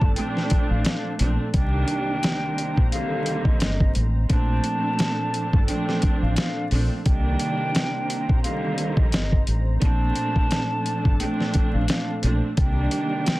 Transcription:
Already playing: D4 A4 A5
0.02 G1, kick
0.15 A#2 F3 A3 C4 D4 G5, closed hi-hat
0.37 snare
0.50 kick, closed hi-hat
0.70 A1 F5
0.85 F5, snare, closed hi-hat
1.19 A#1 A#2 F3 A3 C4 D4, closed hi-hat
1.53 C2 D#3 G3 A#3 C4 D4 C5 G5 A#5, kick, closed hi-hat
1.88 closed hi-hat
2.23 snare, closed hi-hat
2.58 closed hi-hat
2.77 A#1, kick
2.91 C2 D3 D#3 G3 A#3 F5, closed hi-hat
3.26 closed hi-hat
3.45 A#1 D#5, kick
3.60 G1 D#5, snare, closed hi-hat
3.80 kick
3.95 A1, closed hi-hat
4.29 A#1 A#2 F3 A3 C4 D4 A4 A5, kick, closed hi-hat
4.64 closed hi-hat
4.99 snare, closed hi-hat
5.34 closed hi-hat
5.53 G1, kick
5.67 A#2 F3 A3 C4 D4 G5, closed hi-hat
5.89 snare
6.02 kick, closed hi-hat
6.22 A1 F5
6.36 F5, snare, closed hi-hat
6.70 A#1 A#2 F3 A3 C4 D4, open hi-hat
7.05 C2 D#3 G3 A#3 C4 D4 C5 G5 A#5, kick, closed hi-hat
7.40 closed hi-hat
7.75 snare, closed hi-hat
8.10 closed hi-hat
8.29 A#1, kick
8.43 C2 D3 D#3 G3 A#3 F5, closed hi-hat
8.78 closed hi-hat
8.97 A#1 D#5, kick
9.12 G1 D#5, snare, closed hi-hat
9.32 kick
9.47 A1, closed hi-hat
9.81 A#1 A#2 F3 A3 C4 D4 A4 A5, kick, closed hi-hat
10.15 closed hi-hat
10.36 kick
10.51 snare, closed hi-hat
10.86 closed hi-hat
11.05 G1, kick
11.19 A#2 F3 A3 C4 D4 G5, closed hi-hat
11.40 snare
11.54 kick, closed hi-hat
11.73 A1 F5
11.88 F5, snare, closed hi-hat
12.22 A#1 A#2 F3 A3 C4 D4, closed hi-hat
12.57 C2 D#3 G3 A#3 C4 D4 C5 G5 A#5, kick, closed hi-hat
12.91 closed hi-hat
13.26 snare, closed hi-hat

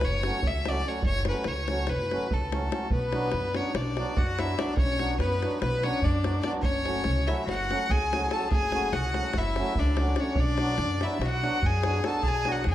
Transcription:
0.01 F#1 C#5, davul high
0.23 F#3 A3 C#4 F#4, davul high
0.43 C#2, davul low
0.48 E5
0.65 F#3 A3 C#4 F#4 D5, davul high
0.86 F#3 A3 C#4 F#4 C#5
1.03 F#1 C#5, davul low
1.15 davul high
1.25 F#3 A3 C#4 B4, davul high
1.29 F#4
1.34 davul high
1.44 C#2 C#5, davul high
1.68 F#3 A3 C#4 F#4, davul high
1.79 davul high
1.87 F#1 B4, davul high
2.00 davul high
2.10 F#3 A3 C#4 F#4, davul high
2.31 C#2 A4, davul low
2.41 davul high
2.52 F#3 A3 C#4 F#4, davul high
2.62 davul high
2.70 F#3 A3 C#4 F#4, davul high
2.90 B1 B3 B4, davul low
3.12 F#3 B3 D4 F#4, davul high
3.32 F#2, davul high
3.45 davul high
3.54 F#3 B3 C#4 D4 F#4 C#5, davul high
3.67 davul high
3.74 B1 D4 D5, davul high
3.96 F#3 B3 D4 F#4, davul high
4.16 F#2 F#4 F#5, davul low
4.29 davul high
4.37 F#3 B3 D4 E4 F#4 E5, davul high
4.48 davul high
4.58 F#3 B3 D4 F#4 D5, davul high
4.77 B1 C#5, davul low
4.81 C#4
4.99 F#3 B3 D4 F#4, davul high
5.19 F#2 B4, davul high
5.24 B3
5.32 davul high
5.42 F#3 B3 D4 F#4, davul high
5.52 davul high
5.61 B1 B3 B4, davul high
5.82 F#3 B3 D4 F#4 C#5, davul high
5.86 C#4
6.02 F#2 D4 D5, davul low
6.15 davul high
6.23 F#3 B3 D4 F#4, davul high
6.35 davul high
6.43 F#3 B3 D4 F#4 D5, davul high
6.61 F#1 C#4 C#5, davul low
6.84 F#3 A3 C#4 F#4, davul high
7.04 C#2, davul high
7.16 davul high
7.26 F#3 A3 C#4 E4 F#4 E5, davul high
7.39 davul high
7.47 F#1 F#4 F#5, davul high
7.69 F#3 A3 C#4 F#4, davul high
7.89 C#2 G#4 G#5, davul low
8.02 davul high
8.12 F#3 A3 C#4 F#4, davul high
8.21 davul high
8.30 F#3 A3 C#4 F#4 A4 A5, davul high
8.50 F#1 G#4 G#5, davul low
8.72 F#3 A3 C#4 F#4, davul high
8.92 C#2 F#4 F#5, davul high
9.14 F#3 A3 C#4 F#4, davul high
9.25 davul high
9.33 F#1, davul high, davul low
9.38 E4 E5
9.45 davul high
9.56 F#3 A3 C#4 F#4, davul high
9.75 C#2 D4 D5, davul low
9.87 davul high
9.97 F#3 A3 C#4, davul high
10.01 F#4
10.07 davul high
10.16 F#3 A3 C#4 F#4, davul high
10.20 C#5
10.35 B1 D4, davul low
10.40 D5
10.58 F#3 B3 D4 F#4, davul high
10.78 F#2, davul high
10.89 davul high
11.00 F#3 B3 D4 E4 F#4 E5, davul high
11.11 davul high
11.19 B1 F#4, davul high
11.25 F#5
11.42 F#3 B3 D4 F#4, davul high
11.62 F#2 G#4, davul low
11.66 G#5
11.73 davul high
11.83 F#3 B3 D4 F#4, davul high
11.93 davul high
12.03 F#3 B3 D4 F#4 A4, davul high
12.07 A5
12.23 B1 G#4, davul low
12.28 G#5
12.44 F#3 B3 D4 F#4, davul high
12.52 F#5
12.64 F#2 G#4, davul high
12.69 G#5

